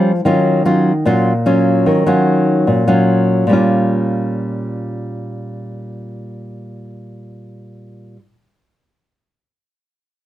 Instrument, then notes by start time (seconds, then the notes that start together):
nylon-string guitar
Already playing: F3 G3 C#4 F4
0.25 D#3 F#3 C#4 F4
0.65 F#3 C#4 F4
1.05 A#2 F#3 C#4 F4
1.46 F#3 C#4 F4
1.86 D#3
2.07 F#3 C#4 F4
2.67 A#2
2.87 F#3 C#4 F4
3.47 A#2 G3
3.51 C#4 F4